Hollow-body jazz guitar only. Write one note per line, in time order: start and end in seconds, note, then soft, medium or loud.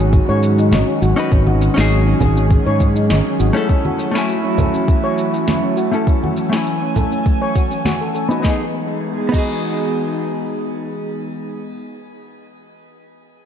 0.00 1.12 C#4 medium
0.00 1.13 D#4 medium
0.00 1.14 F#4 medium
0.00 1.16 G#4 medium
1.16 1.73 C#4 medium
1.16 1.73 D#4 medium
1.16 1.74 F#4 medium
1.16 1.74 B4 medium
1.74 3.50 C#4 medium
1.74 3.51 D#4 medium
1.78 3.52 F#4 medium
1.78 3.53 G#4 medium
3.53 4.10 A3 medium
3.53 4.11 C#4 medium
3.53 4.11 E4 medium
3.53 4.12 A4 medium
4.11 5.88 A3 medium
4.11 5.89 C#4 medium
4.16 5.90 E4 medium
4.16 5.91 G#5 medium
5.91 6.48 A3 medium
5.91 6.48 C#4 medium
5.91 6.49 E4 medium
5.91 6.49 A4 medium
6.49 8.25 A3 medium
6.49 8.26 C#4 medium
6.54 8.28 E4 medium
6.54 8.28 G#5 medium
8.29 8.39 B3 medium
8.29 8.42 D#4 medium
8.29 8.45 F#4 medium
8.29 8.75 B4 medium
8.40 8.59 B3 medium
8.40 8.61 D#4 medium
8.46 8.49 F#4 medium
8.46 8.64 G#4 medium
9.29 12.26 B3 medium
9.29 12.27 D#4 medium
9.35 12.29 F#4 medium
9.35 12.30 G#4 medium